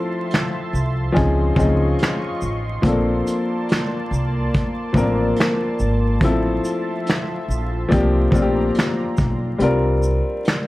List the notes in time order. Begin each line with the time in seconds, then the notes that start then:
Already playing: F3 A3 C4 E4 A4 E5 A5 C6
0.31 snare, closed hi-hat
0.35 finger snap
0.73 C2, shaker
1.12 F3 C4 C#4 D#4 F4 D#5 C#6, closed hi-hat
1.17 C#2 G#4, kick
1.55 C#2 F3 C4 C#4 D#4, kick
1.59 G#4, closed hi-hat, shaker
1.99 snare, closed hi-hat
2.04 finger snap
2.41 A1, shaker
2.82 A#1 F3 A#3 C4 D4 D5 A5, kick, closed hi-hat
2.87 A4
3.27 closed hi-hat, shaker
3.69 snare, closed hi-hat
3.73 finger snap
4.11 C2, shaker
4.54 kick, closed hi-hat
4.93 A1 F3 A#3 C4 D4, kick
4.97 A#4, shaker
5.36 snare, closed hi-hat
5.41 finger snap
5.79 G#1, shaker
6.21 A1 F3 A3 C4 E4 E5, kick, closed hi-hat
6.25 A4
6.65 closed hi-hat, shaker
7.06 snare, closed hi-hat
7.11 finger snap
7.48 A#1, shaker
7.89 C2 F3 A#3 C4 D4 D5 A#5, kick, closed hi-hat
7.93 G4
8.31 A#1 F3 A#3 C4 D4, kick
8.35 F4, shaker
8.42 G4
8.75 snare, closed hi-hat
8.80 finger snap
9.17 B1, kick, shaker
9.59 C2 G3 C4 D4 F4, closed hi-hat
9.64 A#4
10.03 shaker
10.45 snare, closed hi-hat
10.49 finger snap